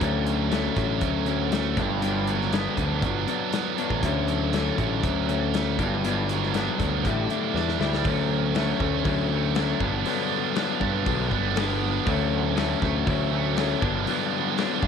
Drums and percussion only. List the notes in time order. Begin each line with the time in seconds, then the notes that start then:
0.01 kick, closed hi-hat
0.27 closed hi-hat
0.52 snare, closed hi-hat
0.76 kick, snare, closed hi-hat
1.01 kick, closed hi-hat
1.26 closed hi-hat
1.52 snare, closed hi-hat
1.77 kick, closed hi-hat
2.02 closed hi-hat
2.27 closed hi-hat
2.41 snare
2.53 snare, closed hi-hat
2.77 kick, closed hi-hat
3.02 kick, closed hi-hat
3.28 closed hi-hat
3.53 snare, closed hi-hat
3.78 closed hi-hat
3.90 kick
4.03 kick, closed hi-hat
4.28 closed hi-hat
4.53 snare, closed hi-hat
4.78 kick, closed hi-hat
5.04 kick, closed hi-hat
5.29 closed hi-hat
5.54 snare, closed hi-hat
5.79 kick, closed hi-hat
6.05 closed hi-hat
6.29 closed hi-hat
6.43 snare
6.54 snare, closed hi-hat
6.80 kick, snare, closed hi-hat
7.05 kick, closed hi-hat
7.30 closed hi-hat
7.56 snare
7.68 snare
7.81 snare
7.93 snare
8.05 kick, open hi-hat
8.55 snare, open hi-hat
8.80 kick
9.05 kick, open hi-hat
9.55 snare, open hi-hat
9.80 kick
10.05 open hi-hat
10.56 snare, open hi-hat
10.81 kick
11.06 kick, open hi-hat
11.31 kick
11.56 snare, open hi-hat
12.07 kick, open hi-hat
12.57 snare, open hi-hat
12.82 kick, snare
13.07 kick, open hi-hat
13.57 snare, open hi-hat
13.82 kick
14.07 open hi-hat
14.58 snare, open hi-hat
14.83 kick